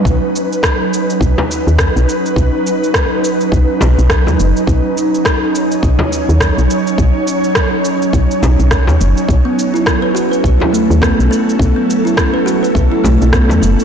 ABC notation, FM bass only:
X:1
M:4/4
L:1/16
Q:"Swing 16ths" 1/4=104
K:Bmix
V:1 name="FM bass" clef=bass
B,,, z6 z B,,, z2 D,,2 B,,, z2 | B,,, z6 z B,,, z B,,, B,,,2 D,, F,,, z | B,,, z6 z B,,, z2 D,,2 B,,, z2 | B,,, z6 z B,,, z B,,, B,,,2 D,, F,,, z |
B,,, z6 z B,,, z2 D,,2 B,,, z2 | B,,, z6 z B,,, z B,,, B,,,2 E,, F,,, z |]